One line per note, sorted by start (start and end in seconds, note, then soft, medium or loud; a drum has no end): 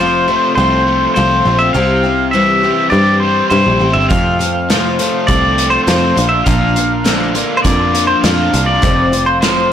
0.00 0.37 F1 loud
0.00 0.29 F2 medium
0.00 0.87 F2 medium
0.00 0.29 C3 medium
0.00 0.29 F3 medium
0.00 0.28 A3 medium
0.00 0.27 C4 medium
0.00 0.27 F4 medium
0.00 0.53 C5 medium
0.28 0.56 F3 soft
0.28 0.57 A3 soft
0.28 0.58 C4 soft
0.28 0.58 F4 medium
0.55 1.06 C2 medium
0.55 1.15 F3 medium
0.55 1.16 A3 medium
0.55 1.17 C4 medium
0.55 1.13 C5 medium
0.60 1.16 F4 medium
0.87 1.75 A3 medium
1.14 1.41 C2 medium
1.14 1.46 F2 medium
1.14 1.46 C3 medium
1.14 1.46 F3 medium
1.14 1.46 A3 medium
1.14 1.45 C4 medium
1.14 1.44 F4 medium
1.14 1.61 C5 medium
1.45 1.70 A#1 medium
1.45 1.74 F3 soft
1.45 1.75 A3 soft
1.45 1.74 C4 soft
1.45 1.75 F4 medium
1.59 1.73 E5 medium
1.73 2.72 C2 medium
1.73 2.04 C3 medium
1.73 2.05 G3 medium
1.73 2.05 C4 medium
1.73 2.04 E4 medium
1.73 2.02 G4 medium
1.73 2.31 F5 loud
2.03 2.33 C4 soft
2.03 2.34 E4 soft
2.03 2.34 G4 soft
2.31 2.63 C3 medium
2.31 3.82 E3 medium
2.31 2.64 G3 medium
2.31 2.64 C4 medium
2.31 2.63 E4 medium
2.31 2.62 G4 medium
2.31 2.90 E5 medium
2.63 3.22 G3 medium
2.63 2.91 C4 soft
2.63 2.92 E4 soft
2.63 2.93 G4 soft
2.90 3.41 G2 medium
2.90 3.49 G3 medium
2.90 3.50 C4 medium
2.90 3.51 E4 medium
2.90 3.22 D5 medium
2.94 3.51 G4 medium
3.20 4.11 G3 medium
3.20 3.48 C5 medium
3.50 3.64 G2 medium
3.50 3.81 C3 medium
3.50 3.81 G3 medium
3.50 3.81 C4 medium
3.50 3.80 E4 medium
3.50 3.78 G4 medium
3.50 3.97 C5 medium
3.67 3.80 A#1 medium
3.80 3.94 A1 medium
3.80 4.09 C4 soft
3.80 4.10 E4 soft
3.80 4.10 G4 medium
3.93 4.09 G1 medium
3.93 4.09 E5 medium
4.09 4.40 F2 medium
4.09 5.07 F2 medium
4.09 4.40 C3 medium
4.09 4.40 F3 medium
4.09 4.40 A3 medium
4.09 4.39 C4 medium
4.09 4.38 F4 medium
4.09 5.27 F5 medium
4.09 kick loud
4.09 closed hi-hat medium
4.39 4.69 F3 soft
4.39 4.69 A3 soft
4.39 4.69 C4 soft
4.39 4.69 F4 soft
4.39 closed hi-hat medium
4.70 4.99 F2 medium
4.70 4.99 C3 medium
4.70 4.99 F3 medium
4.70 4.99 A3 medium
4.70 4.99 C4 medium
4.70 4.97 F4 medium
4.70 snare loud
4.70 closed hi-hat medium
4.99 5.27 F3 soft
4.99 5.28 A3 soft
4.99 5.28 C4 soft
4.99 5.29 F4 soft
4.99 closed hi-hat medium
5.27 5.77 C2 medium
5.27 5.87 F3 medium
5.27 5.87 A3 medium
5.27 5.87 C4 medium
5.27 5.88 F4 medium
5.27 5.74 D5 medium
5.27 kick medium
5.27 closed hi-hat medium
5.58 6.18 A3 medium
5.58 closed hi-hat medium
5.70 5.83 C5 medium
5.84 6.17 F2 medium
5.84 6.12 F2 medium
5.84 6.17 C3 medium
5.84 6.17 F3 medium
5.84 6.31 C5 medium
5.84 closed hi-hat medium
5.88 6.17 A3 medium
5.88 6.17 C4 medium
5.88 6.15 F4 medium
5.88 snare loud
6.16 6.42 A#1 medium
6.16 6.45 A#2 medium
6.16 6.46 A#3 soft
6.16 6.46 D4 soft
6.16 6.46 F4 soft
6.16 closed hi-hat medium
6.29 6.44 E5 medium
6.44 7.43 A#1 loud
6.44 6.76 A#2 medium
6.44 6.76 F3 medium
6.44 6.76 A#3 medium
6.44 6.75 D4 medium
6.44 6.74 F4 medium
6.44 7.60 F5 medium
6.44 kick loud
6.44 closed hi-hat medium
6.76 7.04 A#3 soft
6.76 7.05 D4 soft
6.76 7.05 F4 soft
6.76 closed hi-hat medium
7.04 7.35 A#2 medium
7.04 8.53 D3 medium
7.04 7.35 F3 medium
7.04 7.35 A#3 medium
7.04 7.35 D4 medium
7.04 7.34 F4 medium
7.04 snare medium
7.04 closed hi-hat medium
7.35 7.64 A#3 soft
7.35 7.65 D4 soft
7.35 7.65 F4 medium
7.35 closed hi-hat medium
7.57 7.62 C5 medium
7.62 8.13 F2 loud
7.62 8.23 F3 medium
7.62 8.24 A#3 medium
7.62 8.24 D4 medium
7.62 8.24 F4 medium
7.62 8.05 D5 medium
7.62 kick medium
7.62 closed hi-hat medium
7.94 8.83 A#3 medium
7.94 closed hi-hat medium
8.07 8.23 C5 medium
8.21 8.48 F2 medium
8.21 8.53 A#2 medium
8.21 8.54 F3 medium
8.21 8.54 A#3 medium
8.21 8.53 D4 medium
8.21 8.52 F4 medium
8.21 8.66 F5 medium
8.21 snare loud
8.21 closed hi-hat medium
8.53 8.78 C2 medium
8.53 8.82 A#3 soft
8.53 8.83 D4 soft
8.53 8.83 F4 soft
8.53 closed hi-hat medium
8.66 9.22 D5 medium
8.82 9.73 F1 medium
8.82 9.12 F2 medium
8.82 9.12 C3 medium
8.82 9.12 F3 medium
8.82 9.13 A3 medium
8.82 9.12 C4 medium
8.82 9.11 F4 medium
8.82 kick loud
8.82 closed hi-hat medium
9.12 9.41 F3 soft
9.12 9.42 A3 soft
9.12 9.42 C4 soft
9.12 9.42 F4 medium
9.12 closed hi-hat medium
9.26 9.40 C5 medium
9.41 9.72 F2 medium
9.41 9.72 C3 medium
9.41 9.72 F3 medium
9.41 9.72 A3 medium
9.41 9.71 C4 medium
9.41 9.70 F4 medium
9.41 9.73 C5 medium
9.41 snare medium
9.41 closed hi-hat medium